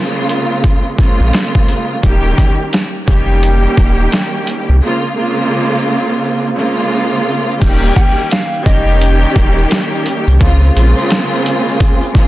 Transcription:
0.00 0.89 C#3 loud
0.00 0.90 G#3 loud
0.00 0.90 A#3 medium
0.00 0.90 C4 medium
0.00 0.91 F4 loud
0.29 closed hi-hat medium
0.64 kick medium
0.64 closed hi-hat medium
0.97 1.96 C#3 medium
0.97 1.97 G#3 medium
0.97 1.97 A#3 medium
0.97 1.97 C4 medium
0.97 1.98 F4 loud
0.97 kick medium
0.97 closed hi-hat medium
1.20 1.32 A#1 loud
1.33 snare loud
1.33 closed hi-hat medium
1.55 kick loud
1.68 closed hi-hat medium
2.02 2.33 D#1 loud
2.02 2.85 D#3 loud
2.02 2.86 G3 medium
2.02 2.86 A#3 medium
2.02 2.86 C#4 medium
2.02 2.87 G4 loud
2.02 kick loud
2.02 closed hi-hat medium
2.38 kick medium
2.38 closed hi-hat medium
2.73 snare loud
2.73 closed hi-hat loud
3.06 3.67 F1 loud
3.06 4.71 D#3 loud
3.06 4.71 G3 loud
3.06 4.71 A#3 medium
3.06 4.72 C#4 medium
3.06 4.72 G4 loud
3.06 kick medium
3.06 closed hi-hat medium
3.43 closed hi-hat medium
3.77 4.07 D#1 loud
3.77 kick medium
3.77 closed hi-hat medium
4.12 snare loud
4.12 closed hi-hat medium
4.47 closed hi-hat medium
4.69 4.81 C2 medium
4.81 5.15 C#3 medium
4.81 5.15 G#3 medium
4.81 5.15 A#3 medium
4.81 5.16 C4 medium
4.81 5.16 F4 loud
5.16 6.47 C#3 loud
5.16 6.48 G#3 medium
5.16 6.48 A#3 loud
5.16 6.48 C4 medium
5.16 6.49 F4 loud
6.55 7.54 C#3 loud
6.55 7.55 G#3 medium
6.55 7.55 A#3 medium
6.55 7.55 C4 medium
6.55 7.56 F4 loud
7.60 7.91 D#1 loud
7.60 8.44 D#3 loud
7.60 10.37 D#3 medium
7.60 8.44 G3 medium
7.60 8.44 A#3 medium
7.60 10.37 C#4 medium
7.60 8.44 C#4 loud
7.60 10.37 G4 medium
7.60 8.45 G4 loud
7.60 kick loud
7.60 closed hi-hat medium
7.60 crash loud
7.60 shaker medium
7.83 shaker soft
7.96 8.28 G5 medium
7.96 kick medium
7.96 closed hi-hat medium
8.18 shaker medium
8.30 8.63 F5 medium
8.30 snare loud
8.30 closed hi-hat loud
8.30 shaker medium
8.52 shaker medium
8.65 9.26 F1 loud
8.65 10.29 D#3 loud
8.65 10.29 G3 loud
8.65 10.30 A#3 medium
8.65 10.30 C#4 loud
8.65 10.30 G4 loud
8.65 9.88 D#5 medium
8.65 kick medium
8.65 closed hi-hat medium
8.88 shaker soft
9.00 closed hi-hat medium
9.00 shaker medium
9.22 shaker medium
9.36 9.66 D#1 loud
9.36 kick medium
9.36 closed hi-hat medium
9.58 shaker soft
9.71 snare loud
9.71 closed hi-hat loud
9.71 shaker medium
9.92 shaker medium
10.06 closed hi-hat medium
10.27 10.39 C2 medium
10.27 shaker soft
10.39 10.70 C#2 loud
10.39 12.28 C#3 medium
10.39 10.73 C#3 loud
10.39 10.73 G#3 medium
10.39 10.74 A#3 medium
10.39 12.28 C4 medium
10.39 10.74 C4 medium
10.39 10.74 F4 loud
10.39 12.28 G#4 medium
10.39 kick loud
10.39 closed hi-hat medium
10.39 shaker medium
10.62 shaker soft
10.74 10.94 A#1 loud
10.74 12.06 C#3 loud
10.74 12.06 G#3 loud
10.74 12.06 A#3 loud
10.74 12.07 C4 loud
10.74 12.07 F4 loud
10.74 closed hi-hat medium
10.98 shaker soft
11.10 snare loud
11.10 closed hi-hat loud
11.10 shaker medium
11.32 shaker medium
11.46 closed hi-hat medium
11.68 shaker soft
11.80 kick medium
11.80 closed hi-hat loud
11.80 shaker medium
12.02 shaker medium
12.14 12.28 C#3 loud
12.14 12.28 G#3 loud
12.14 12.28 A#3 medium
12.14 12.28 C4 medium
12.14 12.28 F4 loud
12.14 kick loud
12.14 closed hi-hat medium

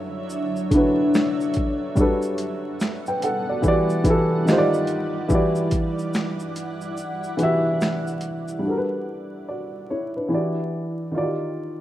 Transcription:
0.00 0.71 D3 medium
0.00 1.94 F#3 medium
0.00 0.72 D4 medium
0.00 1.94 D4 medium
0.00 0.74 E4 medium
0.00 0.75 F#4 medium
0.00 1.94 C#5 medium
0.00 1.99 C#5 medium
0.00 1.94 E5 medium
0.30 shaker medium
0.56 shaker soft
0.71 1.51 D3 medium
0.71 1.51 D4 medium
0.71 1.52 E4 medium
0.71 kick loud
0.71 closed hi-hat medium
0.71 shaker medium
0.75 1.53 F#4 medium
0.75 1.54 B4 medium
1.14 finger snap medium
1.14 snare loud
1.14 shaker medium
1.41 shaker soft
1.54 kick medium
1.54 closed hi-hat soft
1.54 shaker soft
1.95 3.06 G3 medium
1.95 8.60 G3 medium
1.95 3.62 B3 medium
1.95 3.07 D4 medium
1.95 2.81 F#4 medium
1.95 3.62 A4 medium
1.95 3.62 F#5 medium
1.95 kick loud
1.95 shaker medium
2.00 2.82 A4 medium
2.00 2.83 B4 medium
2.22 shaker medium
2.38 closed hi-hat medium
2.38 shaker soft
2.80 finger snap medium
2.80 snare medium
2.80 shaker medium
3.06 3.22 B4 medium
3.06 3.22 G5 medium
3.06 shaker soft
3.22 3.48 A4 medium
3.22 3.48 F#5 medium
3.22 closed hi-hat medium
3.22 shaker medium
3.49 3.64 F#4 medium
3.49 3.67 D5 medium
3.62 3.99 E3 medium
3.62 3.99 E4 medium
3.62 4.00 F#4 medium
3.62 8.59 D5 medium
3.62 kick medium
3.62 shaker medium
3.67 4.01 G4 medium
3.67 4.02 D5 loud
3.90 shaker soft
4.04 4.46 E3 medium
4.04 4.47 E4 medium
4.04 4.48 F#4 medium
4.04 kick loud
4.04 closed hi-hat medium
4.04 shaker medium
4.09 4.49 G4 medium
4.09 4.49 A4 medium
4.46 5.18 D#3 medium
4.46 5.18 D#4 medium
4.46 5.19 F4 medium
4.46 finger snap medium
4.46 snare loud
4.46 shaker medium
4.50 5.20 G4 medium
4.50 4.58 C5 medium
4.58 5.24 D5 loud
4.73 shaker soft
4.87 closed hi-hat medium
4.87 shaker soft
5.28 6.39 E3 medium
5.28 6.40 E4 medium
5.28 8.60 E4 medium
5.28 6.41 F#4 medium
5.28 8.60 F#5 medium
5.28 kick loud
5.28 shaker medium
5.33 6.41 G4 medium
5.33 6.42 D5 medium
5.55 shaker medium
5.71 kick medium
5.71 closed hi-hat medium
5.71 shaker soft
5.99 shaker soft
6.14 finger snap medium
6.14 snare medium
6.14 shaker medium
6.39 shaker soft
6.56 closed hi-hat medium
6.56 shaker soft
6.81 shaker soft
6.97 shaker medium
7.23 shaker soft
7.37 8.17 E3 medium
7.37 8.18 E4 medium
7.37 8.19 F#4 medium
7.37 closed hi-hat medium
7.37 shaker soft
7.42 8.20 G4 medium
7.42 8.20 E5 medium
7.81 finger snap medium
7.81 snare loud
7.81 shaker medium
8.07 shaker soft
8.21 closed hi-hat soft
8.21 shaker soft
8.48 shaker medium
8.59 10.25 G3 medium
8.59 9.45 D4 medium
8.65 9.46 F#4 medium
8.65 9.48 A4 medium
8.71 8.76 A#4 medium
8.78 9.53 B4 medium
9.48 9.88 F#4 soft
9.48 9.87 D5 medium
9.90 10.15 E4 medium
9.90 10.15 C#5 medium
10.16 10.56 D4 soft
10.16 10.55 B4 medium
10.28 11.13 E3 medium
10.28 11.14 E4 medium
10.28 11.14 F#4 medium
10.33 11.15 G4 medium
10.33 11.16 D5 medium
11.12 11.81 D#3 medium
11.12 11.81 D#4 medium
11.12 11.81 F4 medium
11.16 11.23 F#4 medium
11.16 11.81 D5 medium
11.23 11.81 G4 medium

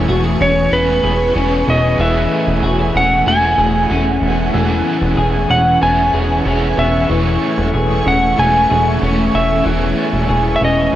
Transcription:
0.00 0.71 E3 medium
0.00 1.99 E3 medium
0.00 0.71 B3 medium
0.00 0.72 B3 loud
0.00 0.73 C#4 loud
0.00 0.74 G#4 loud
0.00 1.97 B4 medium
0.00 7.06 G#5 medium
0.00 1.96 C#6 medium
0.08 0.36 E1 medium
0.08 0.24 F#4 medium
0.24 1.02 G#4 medium
0.40 0.68 E1 loud
0.40 1.35 C#4 medium
0.40 0.74 C#5 loud
0.71 1.00 E1 loud
0.71 1.34 E3 medium
0.71 1.66 B3 medium
0.71 1.35 B3 medium
0.71 1.37 C#4 medium
0.71 1.37 G#4 medium
0.71 1.32 B4 loud
1.03 1.32 E1 loud
1.03 2.34 G#4 medium
1.35 1.64 E1 loud
1.35 1.98 E3 medium
1.35 2.00 B3 medium
1.35 2.95 C#4 medium
1.35 2.01 C#4 medium
1.35 2.03 G#4 medium
1.67 1.96 E1 loud
1.67 2.06 B3 medium
1.67 2.00 D#5 medium
1.98 2.27 E1 loud
1.98 3.26 E3 medium
1.98 4.53 E3 medium
1.98 4.52 A3 medium
1.98 3.26 A3 medium
1.98 3.28 C#4 medium
1.98 2.97 E5 medium
1.98 4.52 F#5 medium
2.03 3.29 G#4 medium
2.31 3.26 A3 medium
2.47 2.61 E1 medium
2.63 2.91 E1 medium
2.63 2.79 F#4 medium
2.79 3.57 G#4 medium
2.95 3.23 E1 loud
2.95 3.90 C#4 medium
2.95 3.29 F#5 loud
3.26 3.55 E1 loud
3.26 3.90 E3 medium
3.26 4.21 A3 medium
3.26 3.90 A3 medium
3.26 3.92 C#4 medium
3.26 3.93 G#4 medium
3.26 4.19 G#5 loud
3.58 3.87 E1 loud
3.58 5.17 G#4 medium
3.90 4.18 E1 loud
3.90 4.53 E3 medium
3.90 4.54 A3 medium
3.90 4.88 C#4 medium
3.90 4.56 C#4 medium
3.90 4.58 G#4 medium
4.22 4.50 E1 loud
4.22 4.61 A3 medium
4.53 4.82 E1 loud
4.53 5.81 E3 medium
4.53 7.09 E3 medium
4.53 5.82 B3 medium
4.53 5.83 C#4 loud
4.53 7.07 B4 medium
4.53 9.61 E5 medium
4.53 10.96 C#6 medium
4.58 5.85 G#4 loud
4.85 5.80 B3 medium
5.02 5.16 E1 loud
5.17 5.46 E1 loud
5.17 6.14 G#4 medium
5.49 5.78 E1 loud
5.49 6.46 C#4 medium
5.49 5.82 F#5 medium
5.81 6.10 E1 loud
5.81 6.45 E3 medium
5.81 6.77 B3 medium
5.81 6.45 B3 medium
5.81 6.47 C#4 medium
5.81 6.48 G#4 medium
5.81 6.42 G#5 loud
6.14 6.42 E1 loud
6.14 7.45 G#4 medium
6.45 6.74 E1 loud
6.45 7.08 E3 medium
6.45 7.10 B3 medium
6.45 8.05 C#4 medium
6.45 7.12 C#4 medium
6.45 7.13 G#4 medium
6.78 7.06 E1 loud
6.78 7.16 B3 medium
6.78 7.08 E5 loud
7.09 7.38 E1 loud
7.09 8.37 E3 medium
7.09 9.65 E3 medium
7.09 9.63 A3 medium
7.09 8.37 A3 medium
7.09 8.39 C#4 loud
7.09 10.96 G#5 medium
7.14 8.40 G#4 medium
7.42 8.36 A3 medium
7.58 7.72 E1 loud
7.74 8.02 E1 loud
7.74 8.69 G#4 medium
8.06 8.34 E1 loud
8.06 9.01 C#4 medium
8.06 8.39 F#5 medium
8.37 8.66 E1 loud
8.37 9.01 E3 medium
8.37 9.32 A3 medium
8.37 9.01 A3 medium
8.37 9.03 C#4 medium
8.37 9.04 G#4 medium
8.37 8.98 G#5 loud
8.70 8.98 E1 loud
8.70 10.28 G#4 medium
9.01 9.30 E1 loud
9.01 9.63 E3 medium
9.01 9.65 A3 medium
9.01 10.00 C#4 medium
9.01 9.67 C#4 medium
9.01 9.68 G#4 medium
9.33 9.62 E1 loud
9.33 9.72 A3 medium
9.33 9.64 E5 loud
9.63 9.93 E1 loud
9.63 10.92 E3 medium
9.63 10.96 E3 loud
9.63 10.93 B3 medium
9.63 10.94 C#4 medium
9.63 10.96 E4 medium
9.63 10.96 B4 medium
9.68 10.95 G#4 loud
9.97 10.91 B3 medium
10.13 10.27 E1 medium
10.29 10.57 E1 loud
10.29 10.96 G#4 medium
10.56 10.62 E5 medium
10.61 10.89 E1 loud
10.61 10.96 C#4 medium
10.61 10.95 D#5 medium
10.92 10.96 E3 medium
10.92 10.96 B3 medium

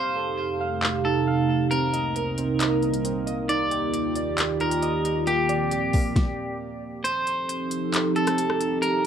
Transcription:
0.00 1.70 F2 medium
0.00 3.46 C3 medium
0.00 1.70 A3 medium
0.00 3.46 D#4 medium
0.00 1.70 G4 medium
0.00 1.00 C5 loud
0.00 0.59 F5 medium
0.16 1.49 A4 medium
0.60 1.26 F5 loud
0.83 clap loud
1.05 1.71 D#4 medium
1.05 1.67 A4 medium
1.27 1.72 F5 medium
1.71 3.47 C2 medium
1.71 6.12 A#3 medium
1.71 2.37 C4 medium
1.71 3.45 A#4 medium
1.71 3.47 A#4 medium
1.71 closed hi-hat medium
1.93 2.59 D#5 medium
1.93 closed hi-hat medium
2.16 2.82 A#4 medium
2.16 closed hi-hat medium
2.38 3.04 C4 medium
2.38 closed hi-hat medium
2.60 3.25 D#5 loud
2.60 clap loud
2.60 closed hi-hat medium
2.83 3.49 A#4 medium
2.83 closed hi-hat soft
2.94 closed hi-hat medium
3.05 3.49 C4 medium
3.05 closed hi-hat medium
3.27 3.49 D#5 medium
3.27 closed hi-hat medium
3.49 5.25 D#2 medium
3.49 5.25 D#3 medium
3.49 4.59 D#4 medium
3.49 5.25 F4 medium
3.49 6.13 G4 medium
3.49 4.56 D5 loud
3.49 closed hi-hat medium
3.71 5.05 G4 medium
3.71 closed hi-hat medium
3.94 closed hi-hat medium
4.16 5.27 D5 loud
4.16 closed hi-hat medium
4.38 clap loud
4.38 closed hi-hat medium
4.60 5.27 D#4 medium
4.60 5.23 A#4 medium
4.60 closed hi-hat soft
4.71 closed hi-hat medium
4.82 5.27 D#5 medium
4.82 closed hi-hat medium
5.05 closed hi-hat medium
5.27 5.93 A#3 medium
5.27 6.56 G4 loud
5.27 closed hi-hat medium
5.49 6.82 D5 loud
5.49 closed hi-hat medium
5.71 7.05 G4 medium
5.71 closed hi-hat medium
5.93 7.05 A#3 medium
5.93 kick medium
5.93 open hi-hat medium
6.16 kick loud
6.16 snare medium
7.04 8.81 F3 medium
7.04 8.81 C4 medium
7.04 9.06 D#4 medium
7.04 8.81 G4 medium
7.04 8.81 A4 medium
7.04 8.12 C5 loud
7.04 closed hi-hat medium
7.27 closed hi-hat medium
7.49 closed hi-hat medium
7.71 closed hi-hat medium
7.94 clap loud
7.94 closed hi-hat medium
8.16 8.79 A4 medium
8.16 closed hi-hat soft
8.27 cross-stick loud
8.27 closed hi-hat medium
8.38 closed hi-hat medium
8.50 cross-stick medium
8.61 closed hi-hat medium
8.82 9.06 A#4 loud
8.82 closed hi-hat medium

